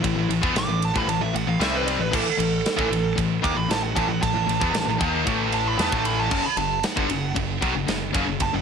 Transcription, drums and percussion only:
0, 0, Header, 1, 2, 480
1, 0, Start_track
1, 0, Tempo, 523104
1, 33, Time_signature, 4, 2, 24, 8
1, 7906, End_track
2, 0, Start_track
2, 0, Title_t, "Drums"
2, 38, Note_on_c, 9, 36, 101
2, 40, Note_on_c, 9, 51, 95
2, 130, Note_off_c, 9, 36, 0
2, 132, Note_off_c, 9, 51, 0
2, 281, Note_on_c, 9, 51, 68
2, 373, Note_off_c, 9, 51, 0
2, 396, Note_on_c, 9, 36, 107
2, 488, Note_off_c, 9, 36, 0
2, 513, Note_on_c, 9, 51, 94
2, 518, Note_on_c, 9, 38, 110
2, 605, Note_off_c, 9, 51, 0
2, 610, Note_off_c, 9, 38, 0
2, 755, Note_on_c, 9, 51, 71
2, 847, Note_off_c, 9, 51, 0
2, 878, Note_on_c, 9, 36, 104
2, 969, Note_off_c, 9, 36, 0
2, 998, Note_on_c, 9, 51, 97
2, 1090, Note_off_c, 9, 51, 0
2, 1245, Note_on_c, 9, 51, 70
2, 1337, Note_off_c, 9, 51, 0
2, 1478, Note_on_c, 9, 51, 99
2, 1483, Note_on_c, 9, 38, 111
2, 1570, Note_off_c, 9, 51, 0
2, 1575, Note_off_c, 9, 38, 0
2, 1723, Note_on_c, 9, 51, 77
2, 1814, Note_off_c, 9, 51, 0
2, 1958, Note_on_c, 9, 36, 111
2, 1963, Note_on_c, 9, 49, 101
2, 2050, Note_off_c, 9, 36, 0
2, 2055, Note_off_c, 9, 49, 0
2, 2202, Note_on_c, 9, 51, 74
2, 2294, Note_off_c, 9, 51, 0
2, 2439, Note_on_c, 9, 51, 103
2, 2444, Note_on_c, 9, 38, 111
2, 2531, Note_off_c, 9, 51, 0
2, 2535, Note_off_c, 9, 38, 0
2, 2557, Note_on_c, 9, 36, 107
2, 2649, Note_off_c, 9, 36, 0
2, 2687, Note_on_c, 9, 51, 76
2, 2778, Note_off_c, 9, 51, 0
2, 2917, Note_on_c, 9, 36, 93
2, 2924, Note_on_c, 9, 51, 97
2, 3009, Note_off_c, 9, 36, 0
2, 3015, Note_off_c, 9, 51, 0
2, 3157, Note_on_c, 9, 36, 97
2, 3165, Note_on_c, 9, 51, 69
2, 3249, Note_off_c, 9, 36, 0
2, 3256, Note_off_c, 9, 51, 0
2, 3401, Note_on_c, 9, 51, 90
2, 3406, Note_on_c, 9, 38, 109
2, 3493, Note_off_c, 9, 51, 0
2, 3498, Note_off_c, 9, 38, 0
2, 3638, Note_on_c, 9, 36, 114
2, 3642, Note_on_c, 9, 51, 77
2, 3730, Note_off_c, 9, 36, 0
2, 3734, Note_off_c, 9, 51, 0
2, 3879, Note_on_c, 9, 36, 93
2, 3881, Note_on_c, 9, 51, 108
2, 3970, Note_off_c, 9, 36, 0
2, 3973, Note_off_c, 9, 51, 0
2, 4122, Note_on_c, 9, 51, 70
2, 4214, Note_off_c, 9, 51, 0
2, 4234, Note_on_c, 9, 36, 109
2, 4326, Note_off_c, 9, 36, 0
2, 4353, Note_on_c, 9, 51, 95
2, 4358, Note_on_c, 9, 38, 110
2, 4445, Note_off_c, 9, 51, 0
2, 4450, Note_off_c, 9, 38, 0
2, 4595, Note_on_c, 9, 36, 113
2, 4595, Note_on_c, 9, 51, 73
2, 4686, Note_off_c, 9, 36, 0
2, 4686, Note_off_c, 9, 51, 0
2, 4834, Note_on_c, 9, 51, 93
2, 4835, Note_on_c, 9, 36, 116
2, 4925, Note_off_c, 9, 51, 0
2, 4926, Note_off_c, 9, 36, 0
2, 5069, Note_on_c, 9, 51, 68
2, 5161, Note_off_c, 9, 51, 0
2, 5313, Note_on_c, 9, 51, 95
2, 5318, Note_on_c, 9, 38, 112
2, 5405, Note_off_c, 9, 51, 0
2, 5409, Note_off_c, 9, 38, 0
2, 5436, Note_on_c, 9, 36, 112
2, 5528, Note_off_c, 9, 36, 0
2, 5552, Note_on_c, 9, 51, 84
2, 5644, Note_off_c, 9, 51, 0
2, 5790, Note_on_c, 9, 57, 105
2, 5793, Note_on_c, 9, 36, 119
2, 5882, Note_off_c, 9, 57, 0
2, 5885, Note_off_c, 9, 36, 0
2, 6029, Note_on_c, 9, 51, 73
2, 6121, Note_off_c, 9, 51, 0
2, 6271, Note_on_c, 9, 51, 109
2, 6276, Note_on_c, 9, 38, 122
2, 6363, Note_off_c, 9, 51, 0
2, 6367, Note_off_c, 9, 38, 0
2, 6395, Note_on_c, 9, 36, 96
2, 6487, Note_off_c, 9, 36, 0
2, 6511, Note_on_c, 9, 51, 80
2, 6602, Note_off_c, 9, 51, 0
2, 6754, Note_on_c, 9, 51, 111
2, 6756, Note_on_c, 9, 36, 103
2, 6846, Note_off_c, 9, 51, 0
2, 6847, Note_off_c, 9, 36, 0
2, 6995, Note_on_c, 9, 36, 105
2, 6995, Note_on_c, 9, 51, 66
2, 7087, Note_off_c, 9, 36, 0
2, 7087, Note_off_c, 9, 51, 0
2, 7233, Note_on_c, 9, 51, 96
2, 7237, Note_on_c, 9, 38, 108
2, 7325, Note_off_c, 9, 51, 0
2, 7329, Note_off_c, 9, 38, 0
2, 7474, Note_on_c, 9, 36, 115
2, 7479, Note_on_c, 9, 51, 80
2, 7566, Note_off_c, 9, 36, 0
2, 7571, Note_off_c, 9, 51, 0
2, 7708, Note_on_c, 9, 51, 106
2, 7712, Note_on_c, 9, 36, 93
2, 7800, Note_off_c, 9, 51, 0
2, 7804, Note_off_c, 9, 36, 0
2, 7906, End_track
0, 0, End_of_file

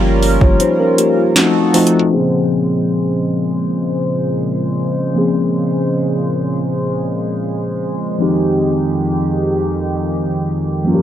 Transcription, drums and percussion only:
0, 0, Header, 1, 2, 480
1, 0, Start_track
1, 0, Tempo, 759494
1, 1340, Time_signature, 4, 2, 24, 8
1, 6965, End_track
2, 0, Start_track
2, 0, Title_t, "Drums"
2, 142, Note_on_c, 9, 46, 58
2, 206, Note_off_c, 9, 46, 0
2, 261, Note_on_c, 9, 36, 92
2, 324, Note_off_c, 9, 36, 0
2, 379, Note_on_c, 9, 42, 64
2, 442, Note_off_c, 9, 42, 0
2, 621, Note_on_c, 9, 42, 76
2, 685, Note_off_c, 9, 42, 0
2, 859, Note_on_c, 9, 38, 117
2, 860, Note_on_c, 9, 42, 63
2, 922, Note_off_c, 9, 38, 0
2, 923, Note_off_c, 9, 42, 0
2, 1100, Note_on_c, 9, 42, 53
2, 1101, Note_on_c, 9, 46, 68
2, 1163, Note_off_c, 9, 42, 0
2, 1164, Note_off_c, 9, 46, 0
2, 1180, Note_on_c, 9, 42, 54
2, 1243, Note_off_c, 9, 42, 0
2, 1260, Note_on_c, 9, 42, 53
2, 1323, Note_off_c, 9, 42, 0
2, 6965, End_track
0, 0, End_of_file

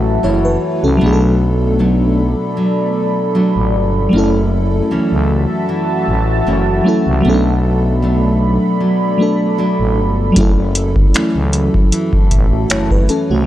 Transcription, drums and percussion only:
0, 0, Header, 1, 2, 480
1, 0, Start_track
1, 0, Key_signature, 3, "minor"
1, 0, Tempo, 779221
1, 623, Time_signature, 4, 2, 24, 8
1, 8293, End_track
2, 0, Start_track
2, 0, Title_t, "Drums"
2, 6383, Note_on_c, 9, 42, 66
2, 6384, Note_on_c, 9, 36, 98
2, 6445, Note_off_c, 9, 42, 0
2, 6446, Note_off_c, 9, 36, 0
2, 6623, Note_on_c, 9, 42, 79
2, 6685, Note_off_c, 9, 42, 0
2, 6751, Note_on_c, 9, 36, 104
2, 6812, Note_off_c, 9, 36, 0
2, 6865, Note_on_c, 9, 42, 61
2, 6873, Note_on_c, 9, 26, 93
2, 6926, Note_off_c, 9, 42, 0
2, 6935, Note_off_c, 9, 26, 0
2, 7103, Note_on_c, 9, 42, 57
2, 7165, Note_off_c, 9, 42, 0
2, 7234, Note_on_c, 9, 36, 85
2, 7295, Note_off_c, 9, 36, 0
2, 7345, Note_on_c, 9, 42, 69
2, 7407, Note_off_c, 9, 42, 0
2, 7471, Note_on_c, 9, 36, 90
2, 7532, Note_off_c, 9, 36, 0
2, 7584, Note_on_c, 9, 42, 53
2, 7586, Note_on_c, 9, 36, 78
2, 7645, Note_off_c, 9, 42, 0
2, 7647, Note_off_c, 9, 36, 0
2, 7823, Note_on_c, 9, 42, 58
2, 7831, Note_on_c, 9, 26, 100
2, 7885, Note_off_c, 9, 42, 0
2, 7893, Note_off_c, 9, 26, 0
2, 7951, Note_on_c, 9, 36, 85
2, 8012, Note_off_c, 9, 36, 0
2, 8064, Note_on_c, 9, 42, 60
2, 8125, Note_off_c, 9, 42, 0
2, 8293, End_track
0, 0, End_of_file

